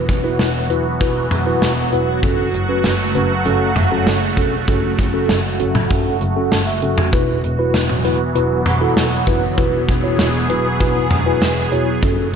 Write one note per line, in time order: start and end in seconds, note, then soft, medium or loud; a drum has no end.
0.00 2.19 E3 medium
0.00 7.09 F#3 medium
0.00 2.19 B3 medium
0.00 9.54 F#4 medium
0.09 0.30 E1 medium
0.09 kick medium
0.09 closed hi-hat medium
0.24 0.48 E4 medium
0.24 0.48 F#4 medium
0.24 0.48 B4 loud
0.39 0.61 E1 loud
0.39 snare loud
0.39 closed hi-hat medium
0.70 0.91 E1 loud
0.70 0.86 E4 medium
0.70 0.86 F#4 medium
0.70 0.86 B4 loud
0.70 closed hi-hat medium
1.01 1.22 E1 medium
1.01 1.25 E4 medium
1.01 1.25 F#4 medium
1.01 1.25 B4 loud
1.01 kick loud
1.01 closed hi-hat medium
1.31 1.53 E1 medium
1.31 closed hi-hat medium
1.31 mid tom medium
1.47 1.71 E4 medium
1.47 1.71 F#4 medium
1.47 1.71 B4 medium
1.62 1.83 E1 loud
1.62 snare loud
1.62 closed hi-hat medium
1.92 2.22 E1 medium
1.92 2.09 E4 medium
1.92 2.09 F#4 medium
1.92 2.09 B4 medium
1.92 closed hi-hat medium
2.23 2.44 F#1 loud
2.23 7.09 C#3 medium
2.23 7.09 A3 medium
2.23 2.47 C#4 medium
2.23 2.47 F#4 medium
2.23 2.47 A4 medium
2.23 kick loud
2.23 closed hi-hat medium
2.54 2.75 F#1 medium
2.54 closed hi-hat medium
2.69 2.93 C#4 medium
2.69 2.93 F#4 medium
2.69 2.93 B4 medium
2.84 3.06 F#1 loud
2.84 snare loud
2.84 closed hi-hat medium
3.15 3.36 F#1 loud
3.15 3.31 C#4 medium
3.15 3.31 F#4 medium
3.15 3.31 B4 medium
3.15 closed hi-hat medium
3.45 3.67 F#1 loud
3.45 3.70 C#4 medium
3.45 3.70 F#4 medium
3.45 3.70 A4 medium
3.45 closed hi-hat medium
3.76 3.98 F#1 medium
3.76 closed hi-hat medium
3.76 mid tom medium
3.92 4.16 C#4 medium
3.92 4.16 F#4 medium
3.92 4.16 A4 medium
4.07 4.28 F#1 loud
4.07 snare loud
4.07 closed hi-hat medium
4.37 4.59 E1 medium
4.37 4.54 C#4 medium
4.37 4.54 F#4 medium
4.37 4.54 A4 medium
4.37 kick medium
4.37 closed hi-hat medium
4.68 4.89 F#1 loud
4.68 4.92 C#4 medium
4.68 4.92 F#4 medium
4.68 4.92 A4 medium
4.68 kick loud
4.68 closed hi-hat medium
4.99 5.20 F#1 medium
4.99 kick medium
4.99 closed hi-hat medium
5.14 5.38 C#4 medium
5.14 5.38 F#4 medium
5.14 5.38 A4 medium
5.29 5.51 F#1 loud
5.29 snare loud
5.29 closed hi-hat medium
5.60 5.81 F#1 medium
5.60 5.76 C#4 medium
5.60 5.76 F#4 medium
5.60 5.76 A4 medium
5.60 closed hi-hat medium
5.75 mid tom loud
5.91 6.12 F#1 loud
5.91 6.15 C#4 medium
5.91 6.15 F#4 medium
5.91 6.15 A4 medium
5.91 kick loud
5.91 closed hi-hat medium
6.21 6.42 F#1 loud
6.21 closed hi-hat medium
6.36 6.61 C#4 medium
6.36 6.61 F#4 medium
6.36 6.61 A4 medium
6.52 6.73 F#1 loud
6.52 6.66 A5 medium
6.52 snare loud
6.52 closed hi-hat medium
6.67 7.10 E5 medium
6.82 7.04 F#1 medium
6.82 6.99 C#4 medium
6.82 6.99 F#4 medium
6.82 6.99 A4 medium
6.82 closed hi-hat medium
6.98 mid tom loud
7.13 7.34 E1 loud
7.13 11.99 E3 medium
7.13 11.99 F#3 medium
7.13 11.99 B3 medium
7.13 7.37 E4 medium
7.13 7.37 F#4 medium
7.13 7.37 B4 medium
7.13 kick loud
7.13 closed hi-hat medium
7.44 7.65 E1 loud
7.44 closed hi-hat medium
7.59 7.83 E4 medium
7.59 7.83 F#4 medium
7.59 7.83 B4 medium
7.74 7.96 E1 loud
7.74 snare loud
7.74 closed hi-hat medium
7.89 mid tom medium
8.05 8.26 E1 loud
8.05 8.21 E4 medium
8.05 8.21 F#4 medium
8.05 8.21 B4 medium
8.05 closed hi-hat medium
8.35 8.57 E1 loud
8.35 8.60 E4 medium
8.35 8.60 F#4 medium
8.35 8.60 B4 medium
8.35 closed hi-hat medium
8.66 8.87 E1 loud
8.66 closed hi-hat medium
8.66 mid tom medium
8.81 9.06 E4 medium
8.81 9.06 F#4 medium
8.81 9.06 A4 medium
8.97 9.18 E1 loud
8.97 snare loud
8.97 closed hi-hat medium
9.27 9.49 F#1 medium
9.27 9.43 E4 medium
9.27 9.43 F#4 medium
9.27 9.43 B4 medium
9.27 kick medium
9.27 closed hi-hat medium
9.58 9.79 E1 loud
9.58 9.82 E4 medium
9.58 9.82 F#4 medium
9.58 12.00 G#4 medium
9.58 9.82 B4 medium
9.58 kick loud
9.58 closed hi-hat medium
9.89 10.10 E1 loud
9.89 kick medium
9.89 closed hi-hat medium
10.04 10.28 E4 medium
10.04 10.28 F#4 medium
10.04 10.28 C#5 medium
10.19 10.40 E1 loud
10.19 snare loud
10.19 closed hi-hat medium
10.50 10.71 E1 loud
10.50 10.66 E4 medium
10.50 10.66 F#4 medium
10.50 10.66 B4 medium
10.50 closed hi-hat medium
10.80 11.02 E1 loud
10.80 11.05 E4 medium
10.80 11.05 F#4 medium
10.80 11.05 B4 loud
10.80 kick loud
10.80 closed hi-hat medium
11.11 11.32 E1 loud
11.11 closed hi-hat medium
11.11 mid tom medium
11.26 11.51 E4 medium
11.26 11.51 F#4 medium
11.26 11.51 B4 loud
11.41 11.63 E1 loud
11.41 snare loud
11.41 closed hi-hat medium
11.72 12.02 E1 medium
11.72 11.88 E4 medium
11.72 11.88 F#4 medium
11.72 11.88 C#5 medium
11.72 closed hi-hat medium
12.03 12.24 F#1 loud
12.03 12.36 C#3 medium
12.03 12.36 F#3 medium
12.03 12.36 A3 medium
12.03 12.27 C#4 medium
12.03 12.36 F#4 medium
12.03 12.27 F#4 medium
12.03 12.27 A4 loud
12.03 kick loud
12.03 closed hi-hat medium